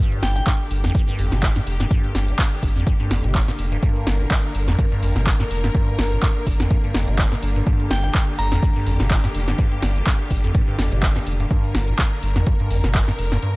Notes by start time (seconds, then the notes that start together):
0.00 G2 D3 A#3 G4
0.12 closed hi-hat
0.23 G1 G5, snare, open hi-hat
0.36 C3 G5, closed hi-hat
0.47 G2, kick, clap, closed hi-hat
0.71 G1, open hi-hat
0.84 F2, snare, closed hi-hat
0.95 G2, kick, closed hi-hat
1.08 G2, closed hi-hat
1.19 G1 F2, open hi-hat
1.32 G1 C3, snare, closed hi-hat
1.43 A2, kick, clap, closed hi-hat
1.56 G2, snare
1.67 F1, open hi-hat
1.80 G2, snare, closed hi-hat
1.91 G2, kick, closed hi-hat
2.04 closed hi-hat
2.15 G1, snare, open hi-hat
2.28 C3, closed hi-hat
2.39 G2, kick, clap, closed hi-hat
2.63 G1, kick, open hi-hat
2.76 F2, closed hi-hat
2.87 G2, kick, closed hi-hat
3.00 G2, closed hi-hat
3.11 G1 F2, snare, open hi-hat
3.24 G1 C3, closed hi-hat
3.35 A2, kick, clap, closed hi-hat
3.48 G2, snare
3.59 F1, open hi-hat
3.72 G2, closed hi-hat
3.83 G2 A#4, kick, closed hi-hat
3.96 closed hi-hat
4.07 G1, snare, open hi-hat
4.20 C3, closed hi-hat
4.31 G2, kick, clap, closed hi-hat
4.55 G1, open hi-hat
4.68 F2, snare, closed hi-hat
4.78 G2, kick, closed hi-hat
4.92 G2, closed hi-hat
5.03 G1 F2, open hi-hat
5.16 G1 C3, snare, closed hi-hat
5.27 A2, kick, clap, closed hi-hat
5.40 G2, snare
5.51 F1, open hi-hat
5.64 G2, snare, closed hi-hat
5.75 G2, kick, closed hi-hat
5.88 closed hi-hat
5.99 G1, snare, open hi-hat
6.12 C3, closed hi-hat
6.23 G2, kick, clap, closed hi-hat
6.47 G1, kick, open hi-hat
6.60 F2, snare, closed hi-hat
6.71 G2, kick, closed hi-hat
6.84 G2, closed hi-hat
6.94 G1 F2, snare, open hi-hat
7.08 G1 C3, closed hi-hat
7.18 A2, kick, clap, closed hi-hat
7.32 G2, snare
7.43 G1, open hi-hat
7.56 G2, closed hi-hat
7.67 G2 G4, kick, closed hi-hat
7.80 closed hi-hat
7.91 G1 G5, snare, open hi-hat
8.04 C3 G5, closed hi-hat
8.15 G2, kick, clap, closed hi-hat
8.39 G1 A#5, open hi-hat
8.52 F2, snare, closed hi-hat
8.63 kick, closed hi-hat
8.76 G2, closed hi-hat
8.87 G1 F2, open hi-hat
9.00 G1 C3, snare, closed hi-hat
9.11 A2, kick, clap, closed hi-hat
9.24 G2, snare
9.35 F1, open hi-hat
9.48 G2, snare, closed hi-hat
9.59 G2, kick, closed hi-hat
9.72 closed hi-hat
9.82 G1, snare, open hi-hat
9.96 C3, closed hi-hat
10.07 G2, kick, clap, closed hi-hat
10.31 G1, kick, open hi-hat
10.44 F2, closed hi-hat
10.55 kick, closed hi-hat
10.68 G2, closed hi-hat
10.79 G1 F2, snare, open hi-hat
10.92 G1 C3, closed hi-hat
11.03 A2, kick, clap, closed hi-hat
11.16 G2, snare
11.27 F1, open hi-hat
11.40 G2, closed hi-hat
11.51 G2 A#4, kick, closed hi-hat
11.64 closed hi-hat
11.75 G1, snare, open hi-hat
11.88 C3, closed hi-hat
11.99 G2, kick, clap, closed hi-hat
12.23 G1, open hi-hat
12.36 F2, snare, closed hi-hat
12.47 G2, kick, closed hi-hat
12.60 G2, closed hi-hat
12.71 G1 F2, open hi-hat
12.84 G1 C3, snare, closed hi-hat
12.95 A2, kick, clap, closed hi-hat
13.08 G2, snare
13.19 F1, open hi-hat
13.32 G2, snare, closed hi-hat
13.43 G2, closed hi-hat